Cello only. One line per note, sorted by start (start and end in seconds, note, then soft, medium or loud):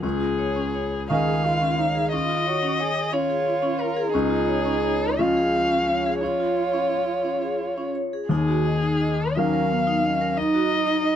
1.10 1.47 G#4 soft
1.45 1.80 F4 soft
1.79 2.14 D#4 soft
2.12 2.48 F4 soft
2.47 2.82 F#4 soft
2.80 3.14 G#4 soft
3.13 4.12 F4 medium
4.12 5.21 D#4 medium
5.19 6.24 C#4 medium
6.22 7.77 F4 soft
9.36 9.72 C#4 soft
9.71 10.06 B3 soft
10.04 10.39 C#4 soft
10.37 11.16 D#4 medium